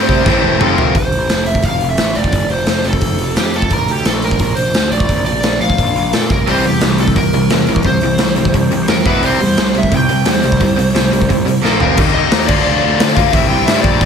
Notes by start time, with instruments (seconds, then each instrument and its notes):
Already playing: distorted electric guitar C3 G3 C4 E4, lead electric guitar C5
0.09 picked electric bass C3, kick
0.25 picked electric bass A1, distorted electric guitar A2 E3 A3 C4 E4, kick, snare
0.44 picked electric bass E1
0.59 picked electric bass F1, overdriven electric guitar F2 C3, distorted electric guitar F3 A3 C4 F4, lead electric guitar A4, mid tom
0.78 picked electric bass F1, lead electric guitar A#4, floor tom
0.94 picked electric bass F1, lead electric guitar C5, kick, open hi-hat
1.12 picked electric bass A1, open hi-hat
1.29 picked electric bass F1, snare, open hi-hat
1.46 lead electric guitar E5, open hi-hat
1.55 kick
1.62 picked electric bass F1, lead electric guitar F5, kick, open hi-hat
1.81 picked electric bass F1, open hi-hat
1.90 lead electric guitar E5
1.98 picked electric bass A1, snare, open hi-hat
2.15 picked electric bass F1, lead electric guitar D5, open hi-hat
2.24 kick
2.32 picked electric bass F1, kick, open hi-hat
2.50 picked electric bass F1, lead electric guitar C5, open hi-hat
2.66 picked electric bass F1, lead electric guitar C5, snare, open hi-hat
2.84 picked electric bass F1, lead electric guitar A4, open hi-hat
2.93 kick
3.01 picked electric bass F1, kick, open hi-hat
3.18 picked electric bass F1, open hi-hat
3.36 picked electric bass F2, lead electric guitar G4, snare, open hi-hat
3.54 lead electric guitar A4, open hi-hat
3.62 kick
3.70 picked electric bass A#1, lead electric guitar A#4, kick, open hi-hat
3.88 picked electric bass D2, lead electric guitar G4, open hi-hat
4.05 picked electric bass A#1, lead electric guitar A4, snare, open hi-hat
4.22 lead electric guitar A#4, open hi-hat
4.31 kick
4.39 picked electric bass A#1, kick, open hi-hat
4.55 picked electric bass A#1, lead electric guitar C5, open hi-hat
4.74 picked electric bass D2, snare, open hi-hat
4.91 picked electric bass A#1, lead electric guitar D5, open hi-hat
5.00 kick
5.09 picked electric bass A#1, kick, open hi-hat
5.25 picked electric bass A#1, lead electric guitar D5, open hi-hat
5.43 picked electric bass A#1, snare, open hi-hat
5.60 picked electric bass A#1, lead electric guitar F5, open hi-hat
5.70 kick
5.78 picked electric bass A#1, kick, open hi-hat
5.95 picked electric bass A#1, open hi-hat
6.13 picked electric bass A#2, lead electric guitar A4, snare, open hi-hat
6.30 picked electric bass C2, lead electric guitar A#4, kick, open hi-hat
6.47 picked electric bass C2, distorted electric guitar C3 E3 G3, overdriven electric guitar C4, lead electric guitar C5, open hi-hat
6.64 picked electric bass E2, distorted electric guitar C3 E3, overdriven electric guitar G3, lead electric guitar G4, open hi-hat
6.81 picked electric bass C2, distorted electric guitar C3 E3, overdriven electric guitar G3, snare, open hi-hat
6.98 distorted electric guitar C3 E3, overdriven electric guitar G3, lead electric guitar A4, open hi-hat
7.08 kick
7.16 picked electric bass C2, distorted electric guitar C3 E3, overdriven electric guitar G3, lead electric guitar A#4, kick, open hi-hat
7.33 picked electric bass C2, distorted electric guitar C3 E3, overdriven electric guitar G3, open hi-hat
7.50 picked electric bass E2, distorted electric guitar C3 E3, overdriven electric guitar G3, snare, open hi-hat
7.67 picked electric bass C2, distorted electric guitar C3 E3, overdriven electric guitar G3, open hi-hat
7.76 kick
7.83 picked electric bass C2, distorted electric guitar C3 E3, lead electric guitar C5, kick, open hi-hat
7.87 overdriven electric guitar G3
8.01 picked electric bass C2, distorted electric guitar C3 E3, overdriven electric guitar G3, open hi-hat
8.18 picked electric bass C2, distorted electric guitar C3 E3, overdriven electric guitar G3, snare, open hi-hat
8.36 picked electric bass C2, distorted electric guitar C3 E3, overdriven electric guitar G3, open hi-hat
8.45 kick
8.54 picked electric bass C2, distorted electric guitar C3 E3, overdriven electric guitar G3, kick, open hi-hat
8.70 picked electric bass C2, distorted electric guitar C3 E3, overdriven electric guitar G3, open hi-hat
8.88 picked electric bass F2, distorted electric guitar C3 E3, overdriven electric guitar G3, lead electric guitar A#4, snare, open hi-hat
9.06 picked electric bass E1, overdriven electric guitar E2 B2, distorted electric guitar E3 B3 E4, lead electric guitar B4, kick, open hi-hat
9.23 picked electric bass C2, distorted electric guitar C3 G3 C4, lead electric guitar C5, open hi-hat
9.40 picked electric bass E2, distorted electric guitar C3 G3, open hi-hat
9.57 picked electric bass C2, distorted electric guitar C3 G3, snare, open hi-hat
9.75 distorted electric guitar C3 G3, lead electric guitar E5, open hi-hat
9.83 kick
9.91 picked electric bass C2, distorted electric guitar C3 G3, kick, open hi-hat
9.96 lead electric guitar G5
10.09 picked electric bass C2, distorted electric guitar C3 G3, open hi-hat
10.25 picked electric bass E2, distorted electric guitar C3 G3, snare, open hi-hat
10.31 lead electric guitar C5
10.42 picked electric bass C2, distorted electric guitar C3 G3, open hi-hat
10.52 kick
10.60 picked electric bass C2, distorted electric guitar C3 G3, kick, open hi-hat
10.76 picked electric bass C2, distorted electric guitar C3 G3, open hi-hat
10.94 picked electric bass C2, distorted electric guitar C3 G3, snare, open hi-hat
11.11 picked electric bass C2, distorted electric guitar C3 G3, open hi-hat
11.21 kick
11.29 picked electric bass C2, distorted electric guitar C3 G3, kick, open hi-hat
11.44 picked electric bass C2, distorted electric guitar C3 G3, open hi-hat
11.63 picked electric bass A#1, distorted electric guitar A#2 F3 A#3, lead electric guitar A4, snare
11.79 picked electric bass F1, overdriven electric guitar F2 C3, distorted electric guitar F3 C4 F4, lead electric guitar A#4, floor tom
11.97 picked electric bass D#2, distorted electric guitar D#3 G3 A#3 D#4, kick, crash
12.14 lead electric guitar D#5
12.31 picked electric bass D#2, snare, open hi-hat
12.47 picked electric bass D2, distorted electric guitar D3 F3 A#3 F4, lead electric guitar D5, kick, crash
12.63 picked electric bass D2, lead electric guitar D5
12.84 picked electric bass D2
13.00 picked electric bass D2, snare, open hi-hat
13.15 picked electric bass D2, distorted electric guitar F3 A#3 F4, lead electric guitar F5, kick
13.20 distorted electric guitar D3
13.32 picked electric bass C2, distorted electric guitar C3 G3, lead electric guitar E5, kick, open hi-hat
13.36 distorted electric guitar C4 E4
13.48 picked electric bass C2, lead electric guitar G5
13.65 picked electric bass G2, lead electric guitar E5, snare, open hi-hat
13.81 picked electric bass A#1, lead electric guitar D5, kick
14.00 picked electric bass A1, distorted electric guitar A2 E3 A3, kick, open hi-hat